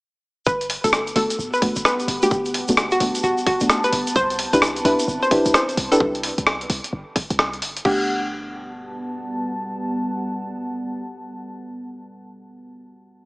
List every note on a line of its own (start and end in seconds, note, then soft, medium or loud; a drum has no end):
0.46 0.77 G1 medium
0.46 4.16 B3 medium
0.46 0.66 B4 loud
0.46 kick loud
0.46 shaker medium
0.61 closed hi-hat soft
0.61 shaker soft
0.70 open hi-hat loud
0.84 1.12 G1 medium
0.84 1.01 A3 medium
0.84 1.01 B3 medium
0.84 1.01 D4 medium
0.84 1.01 F#4 medium
0.84 1.01 A4 medium
0.84 4.91 F#5 medium
0.84 closed hi-hat medium
0.84 shaker medium
0.93 cross-stick loud
0.93 shaker medium
1.07 4.91 G4 medium
1.07 closed hi-hat soft
1.07 shaker soft
1.16 1.26 G1 medium
1.16 1.35 A3 medium
1.16 1.35 B3 medium
1.16 1.35 D4 medium
1.16 1.35 F#4 medium
1.16 1.36 A4 loud
1.16 open hi-hat loud
1.30 closed hi-hat medium
1.30 shaker medium
1.39 1.49 D1 loud
1.39 shaker medium
1.54 1.71 B4 medium
1.54 shaker soft
1.62 1.76 A3 medium
1.62 1.76 B3 medium
1.62 1.76 D4 medium
1.62 1.76 F#4 loud
1.62 kick loud
1.62 open hi-hat loud
1.76 1.82 G1 loud
1.76 4.75 A5 medium
1.76 closed hi-hat medium
1.76 shaker medium
1.85 2.05 B4 medium
1.85 cross-stick loud
1.85 shaker medium
2.00 closed hi-hat soft
2.00 shaker soft
2.08 2.18 G1 loud
2.08 open hi-hat loud
2.23 2.39 A3 medium
2.23 2.39 B3 medium
2.23 2.39 D4 medium
2.23 2.39 F#4 medium
2.23 2.40 G4 medium
2.23 closed hi-hat medium
2.23 shaker medium
2.31 2.62 G1 medium
2.31 kick loud
2.31 shaker medium
2.45 closed hi-hat soft
2.45 shaker soft
2.54 open hi-hat loud
2.68 2.96 G1 medium
2.68 2.77 A3 medium
2.68 2.77 B3 medium
2.68 2.77 D4 medium
2.68 2.77 F#4 loud
2.68 closed hi-hat medium
2.68 shaker medium
2.77 cross-stick loud
2.77 shaker medium
2.91 3.09 F#4 medium
2.91 closed hi-hat soft
2.91 shaker soft
3.00 3.11 G1 medium
3.00 3.20 A3 medium
3.00 3.20 B3 medium
3.00 3.20 D4 medium
3.00 3.20 F#4 loud
3.00 open hi-hat loud
3.15 closed hi-hat medium
3.15 shaker medium
3.23 3.34 D1 loud
3.23 3.39 F#4 medium
3.23 shaker medium
3.38 shaker soft
3.47 3.66 F#4 medium
3.47 kick loud
3.47 open hi-hat loud
3.60 3.67 G1 loud
3.60 3.78 A3 medium
3.60 3.78 B3 medium
3.60 3.78 D4 medium
3.60 3.78 F#4 medium
3.60 closed hi-hat medium
3.60 shaker medium
3.69 cross-stick loud
3.69 shaker medium
3.84 4.01 B4 medium
3.84 closed hi-hat soft
3.84 shaker soft
3.93 4.03 G1 loud
3.93 open hi-hat loud
4.07 closed hi-hat medium
4.07 shaker medium
4.16 4.46 C2 loud
4.16 6.00 C4 medium
4.16 4.35 C5 loud
4.16 kick loud
4.16 shaker medium
4.26 6.00 E4 medium
4.30 closed hi-hat soft
4.30 shaker soft
4.39 open hi-hat loud
4.53 4.81 C2 medium
4.53 4.70 D4 medium
4.53 4.70 E4 medium
4.53 4.70 G4 medium
4.53 4.71 B4 medium
4.53 4.70 B4 medium
4.53 closed hi-hat medium
4.53 shaker medium
4.58 6.00 B5 medium
4.62 cross-stick loud
4.62 shaker medium
4.70 6.00 D5 medium
4.76 closed hi-hat soft
4.76 shaker soft
4.85 4.95 C2 medium
4.85 5.04 D4 medium
4.85 5.04 E4 medium
4.85 5.04 G4 medium
4.85 5.04 B4 medium
4.85 5.05 B4 medium
4.85 open hi-hat loud
4.99 closed hi-hat medium
4.99 shaker medium
5.08 5.18 G1 loud
5.08 shaker medium
5.23 5.40 C5 medium
5.23 shaker soft
5.31 5.45 D4 medium
5.31 5.45 E4 medium
5.31 5.45 G4 medium
5.31 5.45 B4 loud
5.31 kick loud
5.31 open hi-hat loud
5.45 5.52 C2 loud
5.45 closed hi-hat medium
5.45 shaker medium
5.54 5.74 C5 medium
5.54 cross-stick loud
5.54 shaker medium
5.69 closed hi-hat soft
5.69 shaker soft
5.77 5.88 C2 loud
5.77 open hi-hat loud
5.92 6.08 D4 medium
5.92 6.08 E4 medium
5.92 6.08 G4 medium
5.92 6.00 A4 medium
5.92 6.08 B4 medium
5.92 closed hi-hat medium
5.92 shaker medium
6.00 6.31 C2 medium
6.00 kick loud
6.15 closed hi-hat soft
6.23 open hi-hat loud
6.38 6.66 C2 medium
6.38 closed hi-hat medium
6.47 cross-stick loud
6.61 closed hi-hat soft
6.70 6.80 C2 medium
6.70 open hi-hat medium
6.84 closed hi-hat medium
6.93 7.03 G1 loud
7.16 kick loud
7.16 open hi-hat loud
7.30 7.64 C2 loud
7.30 closed hi-hat medium
7.39 cross-stick loud
7.53 closed hi-hat soft
7.62 7.80 G1 loud
7.62 open hi-hat loud
7.77 closed hi-hat medium
7.85 9.19 G1 medium
7.85 12.05 A3 medium
7.85 12.05 B3 medium
7.85 12.05 D4 medium
7.85 12.05 G4 medium
7.85 12.05 F#5 medium
7.85 kick loud
7.85 crash medium
7.94 12.13 G3 medium
8.01 12.21 F#5 medium
8.06 12.26 A5 medium